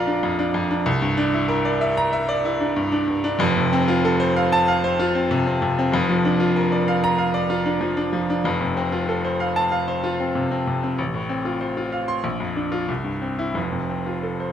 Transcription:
Already playing: A#1 F2 D4 F4 A#4 D5 F5 A#5
0.07 D4
0.23 F2
0.39 D4
0.54 F2
0.70 D4
0.86 C2
1.02 G2
1.17 D4
1.34 E4
1.48 A#4
1.65 D5
1.81 E5
1.97 A#5
2.13 E5
2.29 D5
2.45 E4
2.60 D4
2.76 G2
2.92 D4
3.08 G2
3.24 D4
3.39 F1 F2
3.57 C3
3.73 C4
3.88 F4
4.05 A4
4.20 C5
4.36 F5
4.52 A5
4.68 F5
4.84 C5
4.99 F4
5.15 C4
5.31 C3
5.47 C4
5.62 C3
5.79 C4
5.92 F1 F2
6.09 F3
6.25 D4
6.40 F4
6.56 A#4
6.72 D5
6.88 F5
7.04 A#5
7.18 F5
7.34 D5
7.50 F4
7.66 D4
7.81 F3
7.97 D4
8.13 F3
8.30 D4
8.44 F1 F2
8.61 C3
8.77 C4
8.92 F4
9.09 A4
9.25 C5
9.40 F5
9.56 A5
9.72 F5
9.88 C5
10.04 F4
10.20 C4
10.35 C3
10.51 C4
10.67 C3
10.84 C4
10.98 A1
11.14 A2
11.29 C4
11.45 F4
11.61 C5
11.77 F4
11.92 F5
12.08 C6
12.24 A#1
12.40 F2
12.56 D4
12.72 F4
12.88 C2
13.04 G2
13.22 C4
13.39 E4
13.54 F1 F2
13.72 C3
13.89 C4
14.06 F4
14.23 A4
14.40 C5

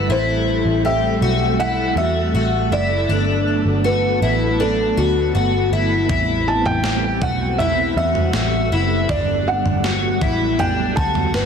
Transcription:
Already playing: A3 B4
0.09 A1 G3 C4 E4 A4 C5
0.65 A1
0.85 G4 E5
1.21 B1 F#4
1.60 E4 F#5
1.96 E2 F#4 E5
2.34 A1 F#4
2.71 F#1 E4 D5
3.09 G1 F#3 B3 D4
3.65 G1
3.84 F#4 B4
4.22 A1 E4
4.60 D4 A4
4.97 D2 F#4
5.35 G1 F#4
5.72 G1 E4
6.09 A1 G3 C4 E4, kick, floor tom
6.48 A5
6.65 A1 G5, floor tom
6.84 G4, snare
7.22 B1 F#4 F#5, kick, floor tom
7.58 E4 E5, floor tom
7.96 E2 F#4 E5
8.15 floor tom
8.33 A1 F#4, snare
8.71 F#1 E4
9.09 G1 F#3 B3 D4 D5, kick, floor tom
9.48 F#5
9.66 G1, floor tom
9.84 F#4, snare
10.21 A1 E4, kick, floor tom
10.59 D4 G5, floor tom
10.96 D2 F#4 A5, kick
11.15 floor tom
11.34 G1 F#4 B4, snare

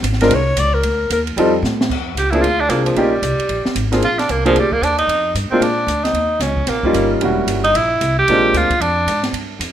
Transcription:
0.02 G#1, hi-hat pedal, ride
0.13 snare
0.21 G#3 C4 D4 F4 A#4, snare, ride
0.29 C2, ride
0.34 C#5
0.57 C#2 D5, hi-hat pedal, ride
0.74 A#4
0.83 D2, ride
1.10 D#2 A#4, hi-hat pedal, ride
1.27 ride
1.36 F2 G3 C4 D#4 F4 A4, ride
1.62 A2, snare, hi-hat pedal
1.81 snare
1.89 F2, kick, crash
2.15 C#2 G4, hi-hat pedal, ride
2.31 A#3 C4 D4 E4 F4 G#4, ride
2.42 D2 F4, ride
2.60 D4
2.69 C2 A#3 C4 D4 F4 G#4, hi-hat pedal, ride
2.86 F3, ride
2.95 A#1 G3 A#3 C#4 D#4 F4 G4, ride
3.22 C2, hi-hat pedal, ride
3.38 muted upright bass stroke, ride
3.49 A#1, ride
3.65 muted upright bass stroke, snare
3.75 G#1, hi-hat pedal, ride
3.92 A#3 C4 D4 F4 G#4, snare, ride
4.02 A#1 F4, ride
4.19 D4, snare, ride
4.29 C2 A#3, hi-hat pedal, ride
4.45 F3 A#3 C4 D4 F4 G#4, ride
4.56 D2 G3, ride
4.72 A#3, kick
4.81 D#2 D4, hi-hat pedal, ride
4.98 D#4, ride
5.07 F2, ride
5.34 G2, hi-hat pedal, ride
5.50 G#3 A#3 C4 D4 F4, muted upright bass stroke
5.60 A#2 D4, ride
5.86 D2, hi-hat pedal, ride
6.04 D#4, snare, ride
6.13 D#2, ride
6.40 C#2 C#4, snare, hi-hat pedal, ride
6.56 kick
6.67 A#1 A#3, snare, ride
6.83 G3 A#3 C#4 D#4 F4, kick
6.93 G1, hi-hat pedal, ride
7.21 E1 G3 A#3 C#4 E4 F#4, ride
7.47 G1, hi-hat pedal, ride
7.64 D#4, ride
7.74 A#1 E4, ride
8.01 C2, hi-hat pedal, ride
8.19 G4
8.28 A#1 G#3 A#3 C4 D4 F4, ride
8.53 D2 F4, hi-hat pedal, ride
8.70 muted upright bass stroke, kick, ride
8.80 F2 D4, ride
9.06 G#2, hi-hat pedal, ride
9.23 snare, ride
9.33 G2, ride
9.59 F2, hi-hat pedal, ride

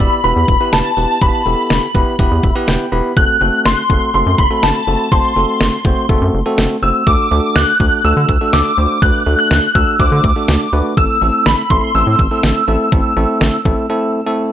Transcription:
Already playing: B5
0.00 B3 E4 G4 D5, kick
0.24 E1 B3 E4 G4 B4 B5
0.36 E2
0.48 E1, kick
0.61 B3 E4 G4 B4
0.73 E1 A5, snare
0.97 E1 B3 E4 G4 B4
1.22 E1 B3 E4 G4 B4 B5, kick
1.46 E1 B3 E4 G4 A4
1.70 E1, snare
1.95 E1 B3 E4 G4 B4, kick
2.19 E1 B3 E4 G4 B4, kick
2.31 E2
2.43 E1 E5, kick
2.56 B3 E4 G4 B4
2.68 E1 G5, snare
2.92 E1 B3 E4 G4 B4 B5
3.17 F#1 A3 C4 F#4 A4 F#6, kick
3.41 F#1 A3 C4 F#4 A4
3.65 F#1 C6, snare
3.90 F#1 A3 C4 F#4 A4, kick
4.14 F#1 A3 C4 F#4 A4 C6
4.26 F#2
4.38 F#1 B5, kick
4.51 A3 C4 F#4 A4
4.63 F#1 A5, snare
4.87 F#1 A3 C4 F#4 A4
5.12 F#1 A3 C4 F#4 C5 C6, kick
5.36 F#1 A3 C4 F#4 A4
5.60 F#1, snare
5.85 F#1 A3 C4 F#4 C5, kick
6.09 F#1 A3 C4 F#4 A4, kick
6.21 F#2
6.34 F#1
6.46 A3 C4 F#4 A4
6.58 F#1, snare
6.83 F#1 A3 C4 F#4 C5 E6
7.07 D2 A3 D4 F#4 A4 D6, kick
7.31 D2 A3 D4 F#4 A4
7.56 D2 F#6, snare
7.80 D2 A3 D4 F#4 A4, kick
8.04 D2 A3 D4 F#4 A4 E6
8.17 D3
8.29 D2, kick
8.41 A3 D4 F#4 A4
8.53 D2 D6, snare
8.78 D2 A3 D4 F#4 C5
9.02 D2 A3 D4 F#4 B4 F#6, kick
9.26 D2 A3 D4 F#4 A4
9.39 F#6
9.51 D2, snare
9.75 D2 A3 D4 F#4 A4 E6, kick
10.00 D2 A3 D4 F#4 C5 D6, kick
10.12 D3
10.24 D2, kick
10.36 A3 D4 F#4 A4
10.48 D2, snare
10.73 D2 A3 D4 F#4 B4
10.97 A1 A3 C4 E4 A4 E6, kick
11.22 A1 A3 C4 E4 A4
11.46 A1 B5, snare
11.70 A1 A3 C4 E4 A4 C6, kick
11.95 A1 A3 C4 E4 A4 E6
12.07 A2
12.19 A1, kick
12.31 A3 C4 E4 A4
12.43 A1, snare
12.68 A1 A3 C4 E4 A4
12.92 A1 A3 C4 E4 A4, kick
13.17 A1 A3 C4 E4 A4
13.41 A1, snare
13.65 A1 A3 C4 E4 A4, kick
13.90 A3 C4 E4 A4
14.26 A3 C4 E4 A4

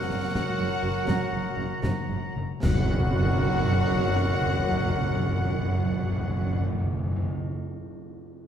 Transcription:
Already playing: F#2 C#3 F#3 F#4 A#4 C#5 F#5
0.11 F#1 F#2 F#4
0.35 F#1 F#2 C#5 F#5, concert bass drum, snare
0.59 F#1 F#2 A#4
0.83 F#1 F#2
1.07 F#1 F#2 A#5, concert bass drum, snare
1.32 F#1 F#2 C#3
1.57 F#1 F#2 F#4
1.82 F#1 F#2 C#5 A#5, concert bass drum, snare
2.09 F#1 F#2 A#4
2.36 F#1 F#2 F#4
2.63 F#1 F#2 F#3 F#4 A#4 F#5, concert bass drum, snare, crash, tam-tam
2.70 F#2 F#3
2.76 F#2 C#4
2.82 F#2 F#4
2.89 F#2 A#4
2.95 F#2 F#5
3.02 F#2
3.08 F#2
3.15 F#2
3.21 F#2
3.28 F#2
3.34 F#2
3.40 F#2
3.46 F#2
3.53 F#2
3.59 F#2
3.66 F#2
3.72 F#2
3.78 F#2
3.84 F#2
3.90 F#2
3.96 F#2
4.03 F#2
4.09 F#2
4.15 F#2
4.21 F#2
4.28 F#2
4.34 F#2
4.40 F#2
4.47 F#2
4.54 F#2
4.59 F#2
4.66 F#2
4.72 F#2
4.78 F#2
4.84 F#2
4.90 F#2
4.96 F#2
5.02 F#2
5.08 F#2
5.14 F#2
5.20 F#2
5.27 F#2
5.33 F#2
5.40 F#2
5.46 F#2
5.53 F#2
5.59 F#2
5.65 F#2
5.72 F#2
5.78 F#2
5.84 F#2
5.91 F#2
5.97 F#2
6.03 F#2
6.09 F#2
6.16 F#2
6.22 F#2
6.28 F#2
6.34 F#2
6.41 F#2
6.47 F#2
6.53 F#2
6.60 F#2
6.66 F#2
6.72 F#2
6.78 F#2
6.84 F#2
6.91 F#2
6.97 F#2
7.04 F#2
7.10 F#2
7.16 F#2
7.22 F#2

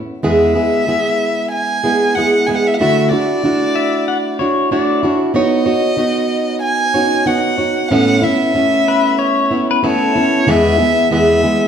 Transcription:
Already playing: A2 A3
0.23 E2 E3 G#3 B3 E4 G#4 E5
0.55 G#3 B3 E4 G#4
0.87 G#3 B3 E4 G#4
1.51 G#5
1.84 G#3 B3 E4 G#4
2.15 G#3 B3 E4 G#4 F#5
2.47 G#3 B3 E4 G#4 G#5
2.55 F#5
2.67 E5
2.74 F#5
2.80 D3 A3 D4 E4 F#4 E5
3.11 D4 E4 F#4 D5
3.44 A3 D4 E4 F#4
3.76 E5
4.08 F#5
4.39 D4 E4 F#4 C#5
4.71 A3 D4 E4 F#4 D5
5.03 D4 E4 F#4
5.07 C#5
5.34 B3 D#4 F#4 C#5 D#5
5.39 C#5
5.66 D#4 F#4 C#5
5.97 B3 D#4 F#4 C#5
6.62 G#5
6.94 B3 D#4 F#4 C#5
7.26 B3 D#4 F#4 C#5 F#5
7.58 D#4 F#4 C#5
7.90 A2 A3 B3 C#4 E4 A4 C#5 F#5
8.22 B3 C#4 E4 E5
8.55 A3 B3 C#4 E4
8.88 B4
9.19 C#5
9.51 B3 C#4 E4
9.71 B4
9.83 A3 B3 C#4 E4 A4 C#5
10.16 B3 C#4 E4
10.46 E2 E3 G#3 B3 E4 G#4 E5
10.78 G#3 B3 E4 G#4
11.11 E2 E3 G#3 B3 E4 G#4 E5
11.43 G#3 B3 E4 G#4

